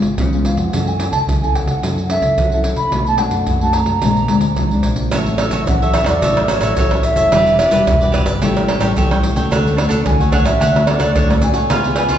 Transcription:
Already playing: C#3 G#3 B3 F4
0.02 G#1, pandeiro
0.18 G#2 C#3, pandeiro, surdo
0.33 G#3 B3 F4, pandeiro
0.45 F5, pandeiro
0.57 F2 F#5, pandeiro
0.73 F#2 F#3 C#4 E4 A4, pandeiro, surdo
0.87 G#5, pandeiro
1.00 C#4 E4 A4, pandeiro
1.11 C#2 A5, pandeiro
1.27 C#2 C#3, pandeiro, surdo
1.42 C#4 E4 A4 G#5, pandeiro
1.55 F#5, pandeiro
1.66 C#2 F#5, pandeiro
1.82 F#2 F#3 C#4 E4 A4, pandeiro, surdo
1.98 pandeiro
2.10 C#4 E4 A4 E5, pandeiro
2.22 C#2, pandeiro
2.38 C#3 F#3, pandeiro, surdo
2.52 C#4 E4 A4 E5, pandeiro
2.64 pandeiro
2.76 C2 B5, pandeiro
2.92 B1 B2 A3 D4 F#4, pandeiro, surdo
3.07 A5, pandeiro
3.18 A3 D4 F#4 F#5, pandeiro
3.31 F#2, pandeiro
3.47 F#2 F#3 F#5, pandeiro, surdo
3.61 A3 D4 F#4 A5, pandeiro
3.73 A#5, pandeiro
3.86 F#2, pandeiro
4.02 A#1 A#2 G#3 C4 D4, pandeiro, surdo
4.16 pandeiro
4.28 D2 G#3 C4 D4, pandeiro
4.41 pandeiro
4.56 C2 F3, pandeiro, surdo
4.71 G#3 C4 D4, pandeiro
4.83 A#1, pandeiro
4.96 pandeiro
5.11 A1 A2 F#3 C#4 E4 F#4 A4 C#5 E5, pandeiro, tamborim, shaker, surdo
5.26 F#3 C#4 E4, pandeiro, shaker
5.38 F#4 A4 C#5 E5, pandeiro, tamborim, shaker
5.51 A1 F#4 A4 C#5 E5, pandeiro, shaker
5.67 A1 E3 F#3 C#4 E4 F#5, pandeiro, tamborim, shaker, surdo
5.82 A4 C#5 E5, pandeiro, shaker
5.93 F#4 A4 C#5 E5, pandeiro, tamborim, shaker
6.06 E2 F#3 C#4 E4 A4 C#5 D5 E5, pandeiro, tamborim, shaker
6.22 A1 A2 F#4 A4 C#5 E5, pandeiro, shaker, surdo
6.36 F#3 C#4 E4, pandeiro, tamborim, shaker
6.48 F#3 C#4 E4 F#4 A4 C#5 E5, pandeiro, tamborim, shaker
6.61 A1 F#4 A4 C#5 E5, pandeiro, tamborim, shaker
6.77 A1 E3 F#4 A4 C#5 E5, pandeiro, shaker, surdo
6.91 F#3 C#4 E4 A4 C#5 E5, pandeiro, tamborim, shaker
7.03 E5, pandeiro, shaker
7.16 F1 A4 C#5 E5, pandeiro, shaker
7.32 E1 E3 G3 D4 E4 F#4 G4 B4 D5, pandeiro, tamborim, shaker, surdo
7.46 pandeiro, shaker
7.59 E4 G4 B4 D5 E5, pandeiro, tamborim, shaker
7.71 E1 G3 D4 E4 F#4 G4 B4 D5, pandeiro, shaker
7.87 E1 B2, pandeiro, tamborim, shaker, surdo
8.01 G3 D4 F#4 G4 B4 D5, pandeiro, shaker
8.12 E4 G4 B4 D5, pandeiro, tamborim, surdo
8.25 G1 G4 B4 D5, pandeiro, tamborim, shaker
8.41 A1 A2 G3 C#4 E4 G4 A4 C#5 G5, pandeiro, shaker, surdo
8.57 pandeiro, tamborim, shaker
8.68 G4 A4 C#5 G5, pandeiro, tamborim
8.80 A1 G3 C#4 E4 G4 A4 C#5 G5, pandeiro, tamborim, shaker
8.96 A1 E3 G4 A4 C#5 G5, pandeiro, shaker, surdo
9.11 G3 C#4 E4 A4 C#5 G5, pandeiro, tamborim, shaker
9.23 pandeiro
9.36 C#2 A3 C#4 F#4 A4 C#5 G5, pandeiro, shaker
9.51 D2 D3 D4 A4 C#5 F#5, pandeiro, tamborim, shaker, surdo
9.66 A3 C#4 F#4, pandeiro, shaker
9.76 D4 A4 C#5 F#5, pandeiro, tamborim
9.89 D2 D4 A4 C#5 F#5, pandeiro, shaker
10.06 D2 A2 A3 C#4 F#4 G#5, pandeiro, tamborim, shaker, surdo
10.20 A4 C#5 F#5, pandeiro, shaker
10.32 D4 A4 C#5 F#5, pandeiro, tamborim, surdo
10.44 A1 A3 C#4 F#4 A4 C#5 E5 F#5, pandeiro, tamborim, shaker
10.60 D2 D3 D4 A4 C#5 F#5, pandeiro, shaker, surdo
10.76 A3 C#4 F#4, pandeiro, tamborim, shaker
10.86 A3 C#4 D4 F#4 A4 C#5 D5 F#5, pandeiro, tamborim
10.99 D2 D4 A4 C#5 F#5, pandeiro, tamborim, shaker
11.15 D2 A2 D4 A4 C#5 F#5, pandeiro, shaker, surdo
11.29 A3 C#4 F#4 A4 C#5 F#5, pandeiro, tamborim, shaker
11.42 A3 C#4 F#4 G#5, pandeiro, shaker
11.54 C2 A4 C#5 F#5, pandeiro, shaker
11.70 C#2 C#3 B3 F4 G#4 B4 C#5 F5, pandeiro, tamborim, shaker, surdo
11.84 B3 F4 G#4, pandeiro, shaker
11.96 F4 B4 C#5 F5 G#5, pandeiro, tamborim
12.09 C#2 F4 B4 C#5 F5, pandeiro, shaker

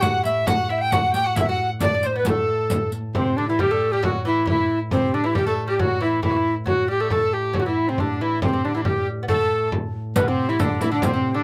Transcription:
Already playing: A2
0.01 F#4 F#5, riq, frame drum
0.24 E4 E5, riq
0.47 F#4 F#5, riq, frame drum
0.69 E4 E5
0.80 G5
0.91 F#4 F#5, riq, frame drum
1.13 G4 G5, riq
1.24 F#4 F#5
1.35 E4 E5, riq, frame drum
1.40 E5
1.47 F#4 F#5
1.80 D4 D5, riq, frame drum
1.88 D4
1.94 D4
2.03 C4 C5, riq
2.14 B3 B4
2.18 B4
2.25 A3 A4, riq, frame drum
2.70 riq, frame drum
2.92 riq
3.15 A2 C3 C4, frame drum
3.37 D3 D4, frame drum
3.48 E3 E4
3.58 G3 G4, frame drum
3.71 A3 A4
3.92 G3 G4
4.03 F#3 F#4, frame drum
4.25 E3 E4, frame drum
4.46 E3 E4, frame drum
4.70 frame drum
4.91 C3 C4, frame drum
5.13 D3 D4
5.24 E3 E4
5.34 G3 G4, frame drum
5.46 A3 A4
5.57 frame drum
5.68 G3 G4
5.79 F#3 F#4, frame drum
6.01 E3 E4
6.23 E3 E4, frame drum
6.30 F#4
6.36 E4
6.66 A2 F#3 F#4, frame drum
6.88 G3 G4, frame drum
7.00 A3 A4
7.10 A3 A4, frame drum
7.32 G4, frame drum
7.53 F#3 F#4 G4, frame drum
7.59 F#3 F#4
7.66 E3 E4
7.76 frame drum
7.87 C3 C4
7.98 D3 D4, frame drum
8.20 E3 E4, frame drum
8.42 C3 C4, frame drum
8.48 C3
8.53 C3
8.64 D3 D4, frame drum
8.75 E3 E4
8.85 G3 G4, frame drum
9.23 B3
9.28 A3 A4, frame drum
9.72 frame drum
9.95 frame drum
10.16 A2 B2 B3 B4, riq, frame drum
10.27 C3 C4
10.38 frame drum
10.49 E3 E4
10.59 D3 D4, riq, frame drum
10.81 E3 E4, riq, frame drum
10.91 D3 D4
11.02 C3 C4, riq, frame drum
11.13 C3 C4
11.24 frame drum
11.35 D3 D4

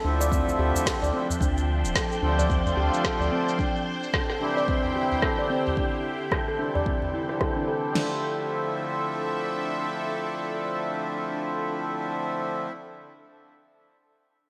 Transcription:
Already playing: F3 D4 C5 E5 G5
0.03 D2 D3 F3 A3 C4 D4 E4
0.20 D5, shaker
0.32 C4, kick, shaker
0.47 udu, shaker
0.59 D2 G4
0.75 udu, shaker
0.86 A4, kick, snare, shaker
1.02 D2 D5, shaker
1.13 D3 F3 A3 C4 E4
1.30 udu, shaker
1.41 D2 D4 D5, kick, shaker
1.58 shaker
1.84 D1, shaker
1.95 A4, kick, snare, shaker
2.11 A4, shaker
2.22 D2 D3 F3 A3 C4 D4 G4
2.39 D5, udu, shaker
2.50 C4, kick, shaker
2.64 D3 F3 A3 C4 F4, udu, shaker
2.77 D2 G4
2.94 shaker
3.04 A4, kick, snare, shaker
3.20 D2 D5, shaker
3.32 C4
3.49 shaker
3.59 D3 D4 E4 G4 G5, kick, shaker
3.76 shaker
4.03 shaker
4.14 A4, kick, snare, shaker
4.30 A4, snare, shaker
4.39 C3 E3 G3 C4 D4 E4
4.57 D5, shaker
4.68 C4, kick, shaker
4.85 udu, shaker
4.96 G4
5.12 udu, shaker
5.22 A4, kick, snare, shaker
5.39 D5, shaker
5.49 C3 E3 G3 C4 E4
5.66 udu, shaker
5.76 D4 A4, kick, shaker
5.94 shaker
6.21 shaker
6.32 A4, kick, snare, shaker
6.48 A4, shaker
6.58 C3 E3 G3 C4 D4 A4
6.75 D5, udu, shaker
6.86 C4, kick
7.01 C3 E3 G3 C4 G4, udu, shaker
7.14 E4
7.27 C3 E3 G3 C4 D4, snare, shaker
7.41 A4, kick, snare
7.57 D4
7.68 A4
7.84 shaker
7.92 D3 F3 A3 D4 A4 E5, snare, crash
7.96 C4 E4

